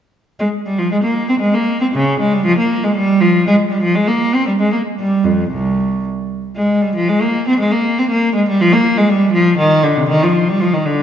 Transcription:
0, 0, Header, 1, 2, 480
1, 0, Start_track
1, 0, Key_signature, -4, "minor"
1, 0, Tempo, 518583
1, 370, Time_signature, 3, 2, 24, 8
1, 2288, Tempo, 497925
1, 4208, Tempo, 523560
1, 6608, Tempo, 500000
1, 9008, Tempo, 514580
1, 10357, End_track
2, 0, Start_track
2, 0, Title_t, "Cello"
2, 0, Program_c, 0, 42
2, 368, Note_on_c, 0, 56, 60
2, 442, Note_off_c, 0, 56, 0
2, 607, Note_on_c, 0, 55, 56
2, 726, Note_off_c, 0, 55, 0
2, 728, Note_on_c, 0, 53, 60
2, 847, Note_off_c, 0, 53, 0
2, 848, Note_on_c, 0, 56, 72
2, 895, Note_off_c, 0, 56, 0
2, 958, Note_on_c, 0, 58, 62
2, 1193, Note_off_c, 0, 58, 0
2, 1193, Note_on_c, 0, 60, 70
2, 1242, Note_off_c, 0, 60, 0
2, 1298, Note_on_c, 0, 56, 62
2, 1426, Note_off_c, 0, 56, 0
2, 1426, Note_on_c, 0, 58, 68
2, 1673, Note_on_c, 0, 60, 61
2, 1678, Note_off_c, 0, 58, 0
2, 1725, Note_off_c, 0, 60, 0
2, 1796, Note_on_c, 0, 49, 77
2, 2037, Note_on_c, 0, 56, 66
2, 2042, Note_off_c, 0, 49, 0
2, 2161, Note_off_c, 0, 56, 0
2, 2163, Note_on_c, 0, 55, 77
2, 2275, Note_on_c, 0, 53, 86
2, 2284, Note_off_c, 0, 55, 0
2, 2394, Note_on_c, 0, 58, 68
2, 2398, Note_off_c, 0, 53, 0
2, 2633, Note_off_c, 0, 58, 0
2, 2639, Note_on_c, 0, 56, 65
2, 2760, Note_on_c, 0, 55, 78
2, 2761, Note_off_c, 0, 56, 0
2, 2996, Note_off_c, 0, 55, 0
2, 2996, Note_on_c, 0, 53, 75
2, 3239, Note_off_c, 0, 53, 0
2, 3248, Note_on_c, 0, 56, 78
2, 3325, Note_off_c, 0, 56, 0
2, 3472, Note_on_c, 0, 55, 66
2, 3595, Note_off_c, 0, 55, 0
2, 3595, Note_on_c, 0, 53, 76
2, 3715, Note_on_c, 0, 56, 76
2, 3716, Note_off_c, 0, 53, 0
2, 3831, Note_on_c, 0, 58, 71
2, 3838, Note_off_c, 0, 56, 0
2, 4079, Note_off_c, 0, 58, 0
2, 4092, Note_on_c, 0, 60, 71
2, 4211, Note_off_c, 0, 60, 0
2, 4215, Note_on_c, 0, 55, 66
2, 4261, Note_off_c, 0, 55, 0
2, 4331, Note_on_c, 0, 56, 62
2, 4446, Note_off_c, 0, 56, 0
2, 4446, Note_on_c, 0, 58, 58
2, 4519, Note_off_c, 0, 58, 0
2, 4696, Note_on_c, 0, 55, 59
2, 4926, Note_on_c, 0, 41, 49
2, 4930, Note_off_c, 0, 55, 0
2, 5170, Note_off_c, 0, 41, 0
2, 5172, Note_on_c, 0, 36, 54
2, 5646, Note_off_c, 0, 36, 0
2, 6129, Note_on_c, 0, 56, 60
2, 6352, Note_off_c, 0, 56, 0
2, 6366, Note_on_c, 0, 55, 55
2, 6488, Note_off_c, 0, 55, 0
2, 6492, Note_on_c, 0, 53, 64
2, 6607, Note_off_c, 0, 53, 0
2, 6612, Note_on_c, 0, 56, 70
2, 6732, Note_off_c, 0, 56, 0
2, 6739, Note_on_c, 0, 58, 63
2, 6977, Note_off_c, 0, 58, 0
2, 6988, Note_on_c, 0, 60, 62
2, 7099, Note_off_c, 0, 60, 0
2, 7103, Note_on_c, 0, 56, 64
2, 7216, Note_on_c, 0, 58, 64
2, 7217, Note_off_c, 0, 56, 0
2, 7458, Note_off_c, 0, 58, 0
2, 7476, Note_on_c, 0, 60, 63
2, 7587, Note_off_c, 0, 60, 0
2, 7592, Note_on_c, 0, 58, 69
2, 7819, Note_off_c, 0, 58, 0
2, 7824, Note_on_c, 0, 56, 59
2, 7936, Note_off_c, 0, 56, 0
2, 7952, Note_on_c, 0, 55, 71
2, 8059, Note_off_c, 0, 55, 0
2, 8073, Note_on_c, 0, 53, 81
2, 8181, Note_off_c, 0, 53, 0
2, 8186, Note_on_c, 0, 58, 76
2, 8416, Note_off_c, 0, 58, 0
2, 8428, Note_on_c, 0, 56, 68
2, 8537, Note_off_c, 0, 56, 0
2, 8539, Note_on_c, 0, 55, 72
2, 8762, Note_on_c, 0, 53, 70
2, 8772, Note_off_c, 0, 55, 0
2, 8999, Note_off_c, 0, 53, 0
2, 9009, Note_on_c, 0, 51, 83
2, 9238, Note_off_c, 0, 51, 0
2, 9241, Note_on_c, 0, 50, 65
2, 9360, Note_off_c, 0, 50, 0
2, 9367, Note_on_c, 0, 48, 71
2, 9483, Note_off_c, 0, 48, 0
2, 9486, Note_on_c, 0, 51, 88
2, 9600, Note_off_c, 0, 51, 0
2, 9614, Note_on_c, 0, 53, 71
2, 9847, Note_off_c, 0, 53, 0
2, 9852, Note_on_c, 0, 55, 75
2, 9964, Note_on_c, 0, 53, 71
2, 9967, Note_off_c, 0, 55, 0
2, 10084, Note_off_c, 0, 53, 0
2, 10086, Note_on_c, 0, 51, 62
2, 10198, Note_on_c, 0, 50, 63
2, 10206, Note_off_c, 0, 51, 0
2, 10357, Note_off_c, 0, 50, 0
2, 10357, End_track
0, 0, End_of_file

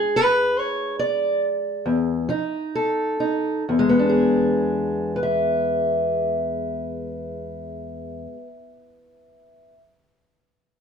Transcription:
0, 0, Header, 1, 2, 480
1, 0, Start_track
1, 0, Tempo, 803213
1, 593, Tempo, 870827
1, 1553, Tempo, 955414
1, 2033, Time_signature, 12, 3, 24, 8
1, 2033, Tempo, 986842
1, 5493, End_track
2, 0, Start_track
2, 0, Title_t, "Steel-string acoustic guitar"
2, 0, Program_c, 0, 25
2, 0, Note_on_c, 0, 40, 76
2, 0, Note_on_c, 0, 56, 53
2, 0, Note_on_c, 0, 62, 51
2, 0, Note_on_c, 0, 68, 107
2, 97, Note_on_c, 0, 71, 99
2, 115, Note_off_c, 0, 68, 0
2, 305, Note_off_c, 0, 40, 0
2, 353, Note_off_c, 0, 71, 0
2, 353, Note_on_c, 0, 73, 89
2, 592, Note_off_c, 0, 73, 0
2, 594, Note_on_c, 0, 74, 92
2, 824, Note_off_c, 0, 74, 0
2, 1069, Note_on_c, 0, 40, 69
2, 1274, Note_off_c, 0, 56, 0
2, 1277, Note_off_c, 0, 62, 0
2, 1307, Note_off_c, 0, 40, 0
2, 1307, Note_on_c, 0, 53, 73
2, 1312, Note_on_c, 0, 63, 62
2, 1563, Note_on_c, 0, 69, 68
2, 1743, Note_off_c, 0, 53, 0
2, 1781, Note_off_c, 0, 63, 0
2, 1787, Note_on_c, 0, 63, 57
2, 2002, Note_off_c, 0, 63, 0
2, 2008, Note_off_c, 0, 69, 0
2, 2032, Note_on_c, 0, 40, 64
2, 2082, Note_on_c, 0, 56, 66
2, 2132, Note_on_c, 0, 59, 61
2, 2180, Note_on_c, 0, 62, 56
2, 2229, Note_on_c, 0, 68, 55
2, 2746, Note_off_c, 0, 62, 0
2, 2748, Note_on_c, 0, 71, 68
2, 2780, Note_off_c, 0, 68, 0
2, 2781, Note_on_c, 0, 76, 68
2, 4258, Note_off_c, 0, 40, 0
2, 4308, Note_off_c, 0, 56, 0
2, 4358, Note_off_c, 0, 59, 0
2, 4974, Note_off_c, 0, 71, 0
2, 5007, Note_off_c, 0, 76, 0
2, 5493, End_track
0, 0, End_of_file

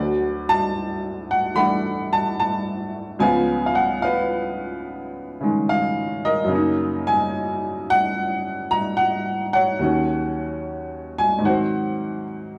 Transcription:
0, 0, Header, 1, 2, 480
1, 0, Start_track
1, 0, Key_signature, -5, "major"
1, 0, Tempo, 824176
1, 1866, Time_signature, 4, 2, 24, 8
1, 7327, End_track
2, 0, Start_track
2, 0, Title_t, "Upright piano"
2, 0, Program_c, 0, 0
2, 0, Note_on_c, 0, 38, 54
2, 0, Note_on_c, 0, 50, 45
2, 0, Note_on_c, 0, 54, 45
2, 0, Note_on_c, 0, 66, 57
2, 0, Note_on_c, 0, 74, 82
2, 57, Control_c, 0, 64, 127
2, 254, Note_off_c, 0, 74, 0
2, 286, Note_on_c, 0, 81, 103
2, 734, Note_off_c, 0, 66, 0
2, 736, Note_off_c, 0, 81, 0
2, 762, Note_on_c, 0, 78, 78
2, 899, Note_on_c, 0, 52, 41
2, 905, Note_off_c, 0, 78, 0
2, 906, Note_on_c, 0, 83, 94
2, 909, Note_on_c, 0, 57, 40
2, 914, Note_on_c, 0, 78, 69
2, 918, Note_on_c, 0, 62, 45
2, 1211, Note_off_c, 0, 83, 0
2, 1239, Note_on_c, 0, 81, 89
2, 1387, Note_off_c, 0, 81, 0
2, 1395, Note_on_c, 0, 81, 85
2, 1847, Note_off_c, 0, 78, 0
2, 1848, Note_off_c, 0, 81, 0
2, 1859, Note_on_c, 0, 37, 57
2, 1863, Note_off_c, 0, 38, 0
2, 1863, Note_off_c, 0, 52, 0
2, 1863, Note_on_c, 0, 49, 51
2, 1865, Note_off_c, 0, 50, 0
2, 1865, Note_on_c, 0, 80, 89
2, 1866, Note_on_c, 0, 53, 49
2, 1868, Note_off_c, 0, 54, 0
2, 1868, Note_off_c, 0, 57, 0
2, 1868, Note_on_c, 0, 59, 62
2, 1872, Note_off_c, 0, 62, 0
2, 1874, Control_c, 0, 64, 0
2, 1876, Note_on_c, 0, 77, 60
2, 1969, Control_c, 0, 64, 127
2, 2124, Note_off_c, 0, 77, 0
2, 2133, Note_on_c, 0, 77, 67
2, 2146, Note_off_c, 0, 80, 0
2, 2185, Note_on_c, 0, 78, 76
2, 2191, Note_off_c, 0, 77, 0
2, 2343, Note_on_c, 0, 77, 80
2, 2346, Note_off_c, 0, 78, 0
2, 2356, Note_on_c, 0, 71, 58
2, 3129, Note_off_c, 0, 77, 0
2, 3139, Note_off_c, 0, 49, 0
2, 3148, Note_on_c, 0, 49, 45
2, 3160, Note_on_c, 0, 51, 41
2, 3166, Note_on_c, 0, 56, 50
2, 3288, Note_off_c, 0, 71, 0
2, 3315, Note_on_c, 0, 77, 85
2, 3640, Note_on_c, 0, 75, 87
2, 3644, Note_on_c, 0, 70, 60
2, 3649, Note_off_c, 0, 77, 0
2, 3753, Note_on_c, 0, 42, 53
2, 3765, Note_off_c, 0, 49, 0
2, 3773, Note_on_c, 0, 49, 55
2, 3783, Note_off_c, 0, 37, 0
2, 3787, Note_off_c, 0, 53, 0
2, 3788, Note_off_c, 0, 59, 0
2, 3789, Note_off_c, 0, 51, 0
2, 3793, Note_off_c, 0, 56, 0
2, 3794, Note_on_c, 0, 58, 51
2, 3795, Control_c, 0, 64, 0
2, 3813, Note_on_c, 0, 63, 64
2, 3896, Control_c, 0, 64, 127
2, 4094, Note_off_c, 0, 75, 0
2, 4118, Note_on_c, 0, 80, 90
2, 4573, Note_off_c, 0, 80, 0
2, 4576, Note_off_c, 0, 70, 0
2, 4602, Note_on_c, 0, 78, 101
2, 5072, Note_on_c, 0, 82, 96
2, 5092, Note_off_c, 0, 78, 0
2, 5223, Note_on_c, 0, 78, 84
2, 5230, Note_off_c, 0, 82, 0
2, 5543, Note_off_c, 0, 78, 0
2, 5552, Note_on_c, 0, 78, 88
2, 5563, Note_on_c, 0, 73, 62
2, 5688, Note_off_c, 0, 42, 0
2, 5699, Note_off_c, 0, 49, 0
2, 5702, Note_on_c, 0, 39, 52
2, 5709, Note_off_c, 0, 58, 0
2, 5710, Note_on_c, 0, 51, 44
2, 5712, Control_c, 0, 64, 0
2, 5716, Note_on_c, 0, 54, 47
2, 5718, Note_off_c, 0, 63, 0
2, 5730, Note_on_c, 0, 61, 52
2, 5830, Control_c, 0, 64, 127
2, 6488, Note_off_c, 0, 78, 0
2, 6493, Note_off_c, 0, 73, 0
2, 6514, Note_on_c, 0, 80, 89
2, 6548, Note_off_c, 0, 80, 0
2, 6631, Note_on_c, 0, 44, 50
2, 6641, Note_off_c, 0, 51, 0
2, 6650, Note_on_c, 0, 51, 43
2, 6662, Note_off_c, 0, 39, 0
2, 6664, Note_off_c, 0, 54, 0
2, 6670, Note_on_c, 0, 78, 63
2, 6672, Control_c, 0, 64, 0
2, 6673, Note_on_c, 0, 54, 47
2, 6676, Note_off_c, 0, 61, 0
2, 6676, Note_on_c, 0, 72, 55
2, 6695, Note_on_c, 0, 60, 56
2, 6760, Control_c, 0, 64, 127
2, 7123, Note_off_c, 0, 78, 0
2, 7327, Note_off_c, 0, 44, 0
2, 7327, Note_off_c, 0, 51, 0
2, 7327, Note_off_c, 0, 54, 0
2, 7327, Note_off_c, 0, 60, 0
2, 7327, Note_off_c, 0, 72, 0
2, 7327, End_track
0, 0, End_of_file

